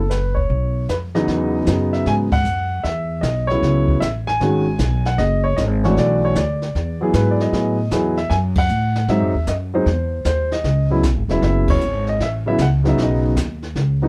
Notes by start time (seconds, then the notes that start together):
Already playing: F#1 A4
0.10 B4, snare, hi-hat pedal
0.35 C#5, kick
0.50 B1, brush sweep, kick
0.89 F2 B4, snare, hi-hat pedal
1.15 E2 C#3 F#3 B3 D#4 D#5, snare
1.28 E2, brush sweep, kick, snare
1.66 F#2 C#3 F#3 B3 D#4, kick, snare, hi-hat pedal
1.93 E5, snare
2.06 G#2 G#5, brush sweep, kick, snare
2.32 F#5, kick, crash
2.44 F#2, hi-hat pedal
2.83 E2 E5, brush sweep, kick, snare
3.21 B1 D#5, kick, snare, hi-hat pedal
3.47 C#3 F#3 B3 C#5, snare
3.51 E4
3.62 C#2, brush sweep, kick, snare
3.88 kick
4.00 A1 E5, kick, snare, hi-hat pedal
4.27 G#5, snare
4.40 G#1 D#3 G#3 C#4 F#4, brush sweep, kick, snare
4.79 B1, kick, snare, hi-hat pedal
5.05 F#5, snare
5.18 F#1 D#5, brush sweep, kick, snare
5.44 C#5
5.56 G#1 D#5, kick, snare, hi-hat pedal
5.84 E3 A3 D4 F#4 C#5, snare
5.96 B1 D5, brush sweep, kick, snare
6.25 C#5
6.35 D2 D5, kick, snare, hi-hat pedal
6.62 snare
6.75 E2, brush sweep, kick, snare
7.01 F#3 B3 E4 G#4
7.13 G#2 B4, kick, snare, hi-hat pedal
7.31 D5
7.40 D#5, snare
7.52 A2 F#3 B3 E4 G#4, brush sweep, kick, snare
7.91 E2 F#3 B3 E4 G#4, kick, snare, hi-hat pedal
8.17 E5, snare
8.30 F#2 G#5, brush sweep, kick, snare
8.55 F#5, kick, crash
8.68 A2, hi-hat pedal
8.95 snare
9.08 G#2 F#3 G#3 C4 D#4 E5, brush sweep, kick, snare
9.22 F#2
9.35 D#2
9.47 F#2 D#5, kick, snare, hi-hat pedal
9.74 F#3 G#3 C4 D#4 C5
9.86 E2, brush sweep, kick, snare
10.25 D#2 C5, kick, snare, hi-hat pedal
10.51 D#5, snare
10.64 C#2, brush sweep, kick, snare
10.90 C#3 F#3 B3 E4
11.03 B1, kick, snare, hi-hat pedal
11.16 G#1
11.28 E1 C#3 F#3 B3 E4 E5, snare
11.42 F#1 E5, brush sweep, kick, snare
11.68 C#5, kick, crash
11.80 G#1, hi-hat pedal
12.07 D#5, snare
12.20 A1 E5, brush sweep, kick, snare
12.46 C#3 F#3 B3 E4 E5
12.58 C#2 F#5, kick, snare, hi-hat pedal
12.84 C#3 F#3 B3 D#4, snare
12.89 E5
12.98 B1, brush sweep, kick, snare
13.02 D#5
13.36 D#2, kick, snare, hi-hat pedal
13.63 snare
13.75 C#2, brush sweep, kick, snare
14.02 C#3 F#3 B3 D#4